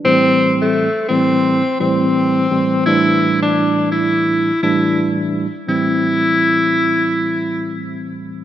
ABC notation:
X:1
M:4/4
L:1/16
Q:"Swing 16ths" 1/4=85
K:Am
V:1 name="Tenor saxophone"
C3 A,3 C4 C6 | E3 D3 E4 E3 z3 | E12 z4 |]
V:2 name="Tine electric piano" clef=bass
[A,,E,G,C]4 z2 [A,,E,G,C]2 z2 [A,,E,G,C]4 [A,,E,G,C]2 | [A,,E,G,D]8- [A,,E,G,D]2 [A,,E,G,D]4 z2 | [A,,E,G,C]16 |]